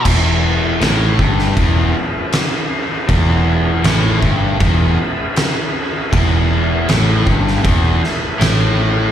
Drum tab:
CC |x---x---x---x---|x---x---x---x---|x---x---x---x---|
SD |----o--o----o---|----o-------o---|----o--o--o-o---|
BD |o-----o-o-------|o-----o-o-------|o-----o-o-------|